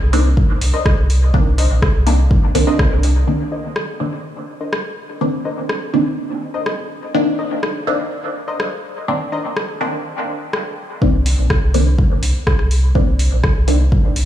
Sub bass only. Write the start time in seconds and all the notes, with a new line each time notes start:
0.01 C2
0.37 C2
0.61 C2
0.98 C2
1.34 C2
1.70 A#1
1.95 C2
2.31 C2
2.55 C2
2.91 C2
11.02 C2
11.38 A#1
11.62 C2
11.98 C2
12.23 C2
12.59 C2
12.95 C2
13.32 A#1
13.56 C2
13.92 C2
14.16 C2